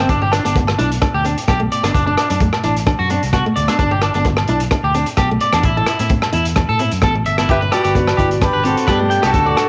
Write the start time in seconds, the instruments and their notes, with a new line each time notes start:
0.09 fingered electric bass G1, clean electric guitar D4, kick, closed hi-hat
0.22 nylon-string guitar D4, clean electric guitar G4
0.32 clean electric guitar D4, cross-stick, closed hi-hat, low agogo
0.45 fingered electric bass G1, nylon-string guitar B3, clean electric guitar D4, closed hi-hat
0.56 nylon-string guitar B3, kick, closed hi-hat
0.67 cross-stick, low agogo
0.79 fingered electric bass B1, clean electric guitar D4, nylon-string guitar E4, closed hi-hat
0.92 closed hi-hat
1.02 nylon-string guitar D4, kick, cross-stick, closed hi-hat, low agogo
1.14 fingered electric bass D2, clean electric guitar G4
1.24 nylon-string guitar C4, clean electric guitar D4, closed hi-hat
1.38 closed hi-hat
1.48 fingered electric bass B1, nylon-string guitar B3, clean electric guitar G4, kick, cross-stick, closed hi-hat, low agogo
1.60 nylon-string guitar A3
1.72 clean electric guitar D5, closed hi-hat
1.83 fingered electric bass G1, nylon-string guitar B3, clean electric guitar D4, cross-stick, closed hi-hat, low agogo
1.94 fingered electric bass F#1, clean electric guitar D4, kick, closed hi-hat
2.07 clean electric guitar D4, nylon-string guitar D4
2.17 clean electric guitar D4, cross-stick, closed hi-hat, low agogo
2.30 fingered electric bass F#2, clean electric guitar D4, nylon-string guitar D4, closed hi-hat
2.40 nylon-string guitar A3, kick, closed hi-hat
2.53 cross-stick, low agogo
2.64 fingered electric bass A1, clean electric guitar D4, nylon-string guitar E4, closed hi-hat
2.76 closed hi-hat
2.86 nylon-string guitar D4, kick, cross-stick, closed hi-hat, low agogo
2.99 fingered electric bass F#2, clean electric guitar F#4
3.10 nylon-string guitar C4, clean electric guitar D4, closed hi-hat
3.23 fingered electric bass C2, closed hi-hat
3.33 nylon-string guitar B3, clean electric guitar F#4, kick, cross-stick, closed hi-hat, low agogo
3.46 nylon-string guitar A3
3.56 fingered electric bass D2, clean electric guitar D5, closed hi-hat
3.68 nylon-string guitar B3, clean electric guitar D4, cross-stick, closed hi-hat, low agogo
3.79 fingered electric bass G1, clean electric guitar D4, kick, closed hi-hat
3.91 nylon-string guitar D4, clean electric guitar G4
4.02 clean electric guitar D4, cross-stick, closed hi-hat, low agogo
4.14 fingered electric bass G1, nylon-string guitar B3, clean electric guitar D4, closed hi-hat
4.25 nylon-string guitar B3, kick, closed hi-hat
4.37 cross-stick, low agogo
4.47 fingered electric bass B1, clean electric guitar D4, nylon-string guitar E4, closed hi-hat
4.60 closed hi-hat
4.71 nylon-string guitar D4, kick, cross-stick, closed hi-hat, low agogo
4.84 fingered electric bass D2, clean electric guitar G4
4.94 nylon-string guitar C4, clean electric guitar D4, closed hi-hat
5.06 closed hi-hat
5.17 fingered electric bass B1, nylon-string guitar B3, clean electric guitar G4, kick, cross-stick, closed hi-hat, low agogo
5.31 nylon-string guitar A3
5.40 clean electric guitar D5, closed hi-hat
5.53 fingered electric bass E2, nylon-string guitar B3, clean electric guitar D4, cross-stick, closed hi-hat, low agogo
5.63 fingered electric bass A1, clean electric guitar E4, kick, closed hi-hat
5.77 nylon-string guitar E4, clean electric guitar A4
5.87 clean electric guitar E4, cross-stick, closed hi-hat, low agogo
5.99 fingered electric bass A2, nylon-string guitar C4, clean electric guitar E4, closed hi-hat
6.09 nylon-string guitar C4, kick, closed hi-hat
6.22 cross-stick, low agogo
6.33 fingered electric bass E2, nylon-string guitar E4, clean electric guitar E4, closed hi-hat
6.45 closed hi-hat
6.56 nylon-string guitar D4, kick, cross-stick, closed hi-hat, low agogo
6.69 fingered electric bass A2, clean electric guitar A4
6.79 nylon-string guitar C4, clean electric guitar E4, closed hi-hat
6.91 fingered electric bass F#2, closed hi-hat
7.02 fingered electric bass A1, nylon-string guitar B3, clean electric guitar A4, kick, cross-stick, closed hi-hat, low agogo
7.15 nylon-string guitar A3
7.26 fingered electric bass G1, clean electric guitar E5, closed hi-hat
7.38 nylon-string guitar B3, clean electric guitar E4, cross-stick, closed hi-hat, low agogo
7.49 fingered electric bass G1, clean electric guitar G4, steel-string acoustic guitar G4 E5, trumpet B4, kick, closed hi-hat
7.61 nylon-string guitar D4, clean electric guitar B4
7.71 steel-string acoustic guitar F#4 D5, clean electric guitar G4, trumpet B4, cross-stick, closed hi-hat, low agogo
7.83 fingered electric bass G1, nylon-string guitar B3, clean electric guitar G4, closed hi-hat
7.95 nylon-string guitar B3, kick, closed hi-hat
8.07 cross-stick, low agogo
8.17 fingered electric bass G1, nylon-string guitar E4, clean electric guitar G4, kick, closed hi-hat
8.31 closed hi-hat
8.41 nylon-string guitar D4, steel-string acoustic guitar D4 B4, trumpet G4, kick, cross-stick, closed hi-hat, low agogo
8.53 fingered electric bass G1, clean electric guitar B4
8.64 nylon-string guitar C4, steel-string acoustic guitar C4 A4, trumpet F#4, clean electric guitar G4, closed hi-hat
8.77 closed hi-hat
8.87 fingered electric bass G2, nylon-string guitar B3, steel-string acoustic guitar B3 G4, trumpet D4, clean electric guitar B4, kick, cross-stick, closed hi-hat, low agogo
9.00 nylon-string guitar A3
9.10 clean electric guitar G5, closed hi-hat
9.22 fingered electric bass C2, nylon-string guitar B3, steel-string acoustic guitar D4 A4, trumpet F#4, clean electric guitar G4, cross-stick, closed hi-hat, low agogo
9.33 fingered electric bass D2, clean electric guitar A4, kick, closed hi-hat
9.46 nylon-string guitar D4, clean electric guitar D5
9.57 clean electric guitar A4, cross-stick, closed hi-hat, low agogo